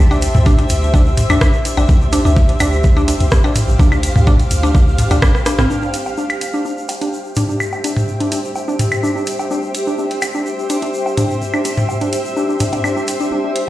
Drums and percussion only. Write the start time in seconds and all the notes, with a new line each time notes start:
0.11 low woodblock, shaker
0.22 closed hi-hat, shaker
0.34 mid tom, shaker
0.46 kick, shaker
0.58 closed hi-hat, shaker
0.69 closed hi-hat, shaker
0.83 shaker
0.94 kick, low woodblock, shaker
1.05 shaker
1.17 closed hi-hat, mid tom, shaker
1.30 closed hi-hat, high woodblock, shaker
1.41 kick, cross-stick, shaker
1.53 shaker
1.65 closed hi-hat, shaker
1.77 low woodblock, shaker
1.88 kick, shaker
2.01 shaker
2.12 closed hi-hat, shaker
2.26 shaker
2.36 kick, shaker
2.49 closed hi-hat, shaker
2.60 closed hi-hat, high woodblock, low woodblock, shaker
2.73 shaker
2.84 kick, shaker
2.97 shaker
3.08 closed hi-hat, shaker
3.20 closed hi-hat, shaker
3.31 kick, cross-stick, shaker
3.44 low woodblock, shaker
3.55 closed hi-hat, mid tom, shaker
3.69 shaker
3.79 kick, shaker
3.92 high woodblock, shaker
4.03 closed hi-hat, shaker
4.16 mid tom, shaker
4.27 kick, low woodblock, shaker
4.40 closed hi-hat, shaker
4.51 closed hi-hat, shaker
4.64 shaker
4.75 kick, shaker
4.88 shaker
4.98 closed hi-hat, mid tom, shaker
5.11 closed hi-hat, low woodblock, shaker
5.22 kick, cross-stick, high woodblock, shaker
5.35 cross-stick, shaker
5.46 cross-stick, closed hi-hat, shaker
5.59 cross-stick, mid tom, shaker
5.70 shaker
5.82 shaker
5.94 closed hi-hat, shaker
6.05 low woodblock, shaker
6.17 shaker
6.30 closed hi-hat, high woodblock, shaker
6.41 closed hi-hat, shaker
6.53 shaker
6.65 shaker
6.78 shaker
6.89 closed hi-hat, low woodblock, shaker
7.01 closed hi-hat, shaker
7.13 shaker
7.25 shaker
7.36 closed hi-hat, mid tom, shaker
7.50 shaker
7.60 high woodblock, shaker
7.72 low woodblock, shaker
7.84 closed hi-hat, shaker
7.97 mid tom, shaker
8.08 shaker
8.20 closed hi-hat, shaker
8.32 closed hi-hat, shaker
8.44 shaker
8.55 low woodblock, shaker
8.69 shaker
8.79 closed hi-hat, mid tom, shaker
8.92 closed hi-hat, high woodblock, shaker
9.04 shaker
9.17 shaker
9.26 closed hi-hat, shaker
9.39 low woodblock, shaker
9.51 shaker
9.62 shaker
9.75 closed hi-hat, shaker
9.86 shaker
9.98 shaker
10.10 closed hi-hat, shaker
10.22 closed hi-hat, high woodblock, low woodblock, shaker
10.35 shaker
10.46 shaker
10.59 shaker
10.70 closed hi-hat, shaker
10.82 closed hi-hat, shaker
10.94 shaker
11.06 low woodblock, shaker
11.17 closed hi-hat, mid tom, shaker
11.30 shaker
11.42 shaker
11.53 high woodblock, shaker
11.65 closed hi-hat, shaker
11.77 mid tom, shaker
11.89 low woodblock, shaker
12.01 closed hi-hat, shaker
12.13 closed hi-hat, shaker
12.25 shaker
12.37 shaker
12.49 shaker
12.60 closed hi-hat, mid tom, shaker
12.73 closed hi-hat, low woodblock, shaker
12.84 high woodblock, shaker
12.97 shaker
13.08 closed hi-hat, shaker
13.20 shaker
13.56 closed hi-hat